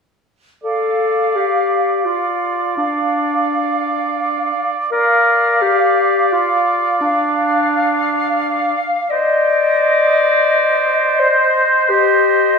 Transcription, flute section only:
0.65 2.03 F5 soft
2.07 2.77 F5 soft
2.78 4.70 F5 soft
4.93 6.29 F5 soft
6.30 7.00 F5 soft
7.02 9.09 F5 soft
9.10 11.20 D#5 soft
11.21 11.89 D#5 soft
11.90 12.59 D#5 soft

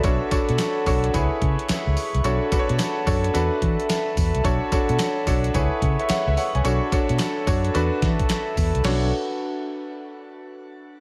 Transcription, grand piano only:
0.00 0.28 D4 medium
0.00 0.28 F#4 medium
0.00 0.20 B4 medium
0.04 0.28 A4 medium
0.04 0.28 C#5 loud
0.31 0.79 D4 medium
0.31 0.80 F#4 medium
0.31 0.80 A4 medium
0.31 0.80 C#5 loud
0.86 1.14 D4 medium
0.86 1.14 F#4 medium
0.86 1.14 A4 medium
0.86 1.13 C#5 loud
1.14 2.07 E4 loud
1.14 2.07 G#4 medium
1.14 2.07 B4 medium
1.14 2.07 C#5 medium
2.24 2.48 D4 medium
2.24 2.48 F#4 medium
2.24 2.49 A4 medium
2.24 2.49 C#5 medium
2.51 3.00 D4 medium
2.51 3.00 F#4 medium
2.51 3.00 A4 medium
2.51 2.60 B4 medium
2.59 3.03 C#5 loud
3.06 3.32 D4 medium
3.06 3.33 F#4 medium
3.06 3.33 A4 medium
3.06 3.35 C#5 loud
3.34 4.27 D4 medium
3.34 4.27 F#4 medium
3.34 4.27 A4 medium
3.34 4.27 B4 medium
4.44 4.68 D4 medium
4.44 4.68 F#4 medium
4.44 4.68 A4 medium
4.44 4.69 C#5 loud
4.72 5.20 D4 medium
4.72 5.20 F#4 medium
4.72 5.20 A4 medium
4.72 5.20 C#5 loud
5.27 5.54 D4 medium
5.27 5.54 F#4 medium
5.27 5.55 A4 medium
5.27 5.54 C#5 medium
5.54 6.47 E4 medium
5.54 6.47 G#4 medium
5.54 5.82 B4 medium
5.54 5.82 C#5 loud
6.00 6.09 B4 medium
6.00 6.09 E5 medium
6.10 6.27 C#5 medium
6.10 6.26 F#5 medium
6.27 6.37 B4 medium
6.27 6.37 E5 medium
6.38 6.54 C#5 medium
6.38 6.54 F#5 medium
6.55 6.64 C#5 medium
6.55 6.81 G#5 medium
6.64 6.88 D4 medium
6.64 6.88 F#4 medium
6.64 6.89 A4 medium
6.64 6.89 C#5 medium
6.92 7.40 D4 medium
6.92 7.40 F#4 medium
6.92 7.40 A4 medium
6.92 7.41 C#5 loud
7.47 7.73 D4 medium
7.47 7.73 F#4 medium
7.47 7.74 A4 medium
7.47 7.75 C#5 loud
7.74 8.67 D4 loud
7.74 8.67 F#4 medium
7.74 8.68 A4 medium
7.74 8.68 B4 loud
8.85 9.10 D4 medium
8.85 9.10 F#4 medium
8.85 9.10 A4 medium
8.85 9.10 C#5 medium

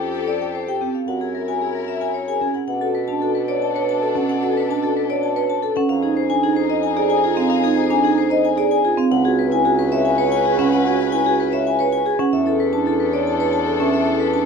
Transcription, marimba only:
0.41 0.58 A4 medium
0.67 0.85 G4 medium
0.81 0.98 C4 medium
1.08 1.25 F#4 medium
1.48 1.65 F#4 medium
2.01 2.19 A#4 medium
2.28 2.46 G#4 medium
2.41 2.59 C#4 medium
2.82 2.99 F#4 medium
3.09 3.26 D4 medium
3.22 3.39 F#4 medium
3.49 3.66 C#5 medium
3.76 3.93 B4 medium
4.02 4.20 A4 medium
4.16 4.33 C#4 medium
4.43 4.60 F#4 medium
4.69 4.87 D4 medium
4.83 5.00 F#4 medium
5.10 5.27 C#5 medium
5.36 5.54 B4 medium
5.63 5.81 A4 medium
5.77 5.94 C#4 medium
6.03 6.21 D#4 medium
6.30 6.47 D4 medium
6.43 6.61 D#4 medium
6.70 6.88 C5 medium
6.97 7.14 G#4 loud
7.24 7.41 F4 medium
7.37 7.55 C4 loud
7.64 7.81 D#4 medium
7.90 8.08 D4 medium
8.03 8.21 D#4 medium
8.30 8.48 C5 medium
8.57 8.75 G#4 loud
8.84 9.02 F4 medium
8.97 9.15 C4 loud
9.25 9.42 F#4 medium
9.51 9.69 E4 medium
9.65 9.82 F#4 medium
9.92 10.09 C#5 medium
10.18 10.36 B4 loud
10.45 10.63 G#4 medium
10.59 10.76 C#4 loud
10.86 11.03 F#4 medium
11.12 11.30 E4 medium
11.26 11.43 F#4 medium
11.52 11.70 C#5 medium
11.79 11.97 B4 medium
12.06 12.23 G#4 medium
12.19 12.37 C#4 loud
12.46 12.64 E4 medium
12.73 12.90 D4 medium
12.86 13.04 E4 medium
13.13 13.31 C#5 medium
13.40 13.57 B4 medium
13.67 13.84 A4 medium
13.80 13.97 C#4 medium
14.07 14.24 E4 medium
14.33 14.45 D4 medium

